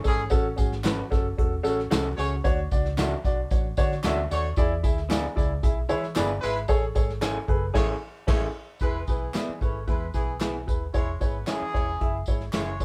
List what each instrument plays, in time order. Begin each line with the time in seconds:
0.04 fingered electric bass G#1, horn section E3 C#4 G#4, upright piano C#4 G#4 A4, kick, open hi-hat, tambourine
0.18 closed hi-hat
0.30 fingered electric bass A1, upright piano C#4 F#4 A4, kick, closed hi-hat, tambourine
0.56 fingered electric bass G#1, upright piano C#4 F#4 G#4, kick, closed hi-hat, tambourine
0.72 snare
0.84 clean electric guitar C#4 F#4 A4, upright piano C#4 F#4 B4, snare, clap, closed hi-hat, tambourine
1.10 fingered electric bass F#1, upright piano C#4 F#4 A4, kick, snare, closed hi-hat, tambourine
1.38 fingered electric bass E1, upright piano C#4 F#4 A4, kick, closed hi-hat
1.63 fingered electric bass A1, horn section C#3 A3 F#4, upright piano C#4 F#4 A4, closed hi-hat, tambourine
1.80 snare
1.91 fingered electric bass C2, horn section C#3 A3 F#4, upright piano C#4 F#4 A4, clean electric guitar C#4 F#4 A4, snare, clap, closed hi-hat, tambourine
2.16 fingered electric bass C#2, horn section A3 F#4 C#5, upright piano C#4 F#4 G#4, open hi-hat, tambourine
2.44 fingered electric bass D2, upright piano D4 F#4 C#5, kick, closed hi-hat, tambourine
2.71 fingered electric bass C#2, upright piano D4 F#4 D5, kick, closed hi-hat, tambourine
2.85 snare
2.97 clean electric guitar C#4 F#4 A4, upright piano D4 F#4 E5, snare, clap, closed hi-hat, tambourine
3.25 fingered electric bass B1, upright piano D4 F#4 D5, kick, closed hi-hat, tambourine
3.51 fingered electric bass A1, upright piano D4 F#4 C#5, kick, closed hi-hat, tambourine
3.77 fingered electric bass D3, horn section A3 F#4 C#5, upright piano D4 F#4 C#5, kick, closed hi-hat, tambourine
3.92 snare
4.04 fingered electric bass D2, horn section A3 F#4 C#5, clean electric guitar C#4 F#4 A4, upright piano D4 F#4 E5, snare, clap, closed hi-hat, tambourine
4.30 fingered electric bass D#2, horn section A3 F#4 C#5, upright piano D4 F#4 D5, closed hi-hat, tambourine
4.43 closed hi-hat
4.56 fingered electric bass E2, upright piano E4 G#4 D5, kick, closed hi-hat, tambourine
4.83 fingered electric bass D2, upright piano E4 G#4 E5, kick, closed hi-hat, tambourine
4.98 snare
5.09 clean electric guitar B3 D4 G#4, upright piano E4 G#4 D5, snare, clap, closed hi-hat, tambourine
5.36 fingered electric bass C#2, upright piano E4 G#4 D5, kick, closed hi-hat, tambourine
5.63 fingered electric bass B1, upright piano E4 G#4 E5, kick, closed hi-hat, tambourine
5.89 fingered electric bass E3, horn section G#3 E4 B4, upright piano E4 G#4 C#5, closed hi-hat, tambourine
6.03 snare
6.15 fingered electric bass G1, horn section G#3 E4 B4, clean electric guitar B3 D4 G#4, upright piano E4 G#4 D5, snare, clap, closed hi-hat, tambourine
6.41 fingered electric bass G#1, horn section G#3 E4 B4, upright piano E4 G#4 E5, closed hi-hat, tambourine
6.56 closed hi-hat
6.68 fingered electric bass A1, upright piano G#4 A4 C#5, kick, closed hi-hat, tambourine
6.95 fingered electric bass G#1, upright piano G#4 A4 C#5, kick, closed hi-hat, tambourine
7.09 snare
7.21 clean electric guitar C#4 E4 G#4, upright piano G#4 A4 C#5, snare, clap, closed hi-hat, tambourine
7.48 fingered electric bass F#1, upright piano G#4 A4 B4, kick, closed hi-hat
7.74 fingered electric bass A1, horn section A3 G#4 C#5, clean electric guitar C#4 E4 G#4, upright piano G#4 A4 C#5, kick, snare, crash
8.27 fingered electric bass A1, horn section A3 G#4 C#5, clean electric guitar C#4 E4 G#4, upright piano G#4 A4 C#5, kick, snare, crash
8.79 fingered electric bass E1, horn section G#3 E4 B4, upright piano E4 G#4 B4, kick, closed hi-hat, tambourine
9.06 fingered electric bass B1, horn section E3 B3 G#4, upright piano E4 G#4 B4, kick, closed hi-hat, tambourine
9.34 clean electric guitar B3 E4 G#4, upright piano E4 G#4 D5, snare, clap, closed hi-hat, tambourine
9.49 muted fingered electric bass stroke
9.60 fingered electric bass G#1, horn section C#4 A4 C#5, upright piano E4 G#4 B4, kick, closed hi-hat, tambourine
9.87 fingered electric bass E2, horn section G#3 E4 B4, upright piano E4 G#4 B4, kick, closed hi-hat, tambourine
10.14 fingered electric bass B1, horn section E3 B3 G#4, upright piano E4 G#4 B4, kick, closed hi-hat, tambourine
10.40 clean electric guitar B3 E4 G#4, upright piano E4 G#4 B4, snare, clap, closed hi-hat, tambourine
10.67 fingered electric bass D#1, upright piano E4 G#4 B4, kick, closed hi-hat, tambourine
10.94 fingered electric bass E1, horn section G#3 E4 C#5, upright piano E4 G#4 C#5, kick, closed hi-hat, tambourine
11.20 fingered electric bass G#1, horn section B3 G#4 B4, upright piano E4 G#4 C#5, kick, closed hi-hat, tambourine
11.47 horn section E3 C#4 G#4, clean electric guitar C#4 E4 G#4, upright piano E4 G#4 C#5, snare, clap, closed hi-hat, tambourine
11.61 muted fingered electric bass stroke
11.74 fingered electric bass E1, upright piano E4 G#4 C#5, kick, snare, closed hi-hat
12.01 fingered electric bass F#1, upright piano E4 G#4 E5, kick, closed hi-hat
12.26 fingered electric bass G#1, upright piano E4 G#4 C#5, kick, closed hi-hat, tambourine
12.41 snare
12.53 fingered electric bass F#1, horn section G#3 E4 C#5, clean electric guitar C#4 E4 G#4, upright piano E4 G#4 E5, snare, clap, closed hi-hat, tambourine
12.80 upright piano E4 G#4 C#5, kick, closed hi-hat, tambourine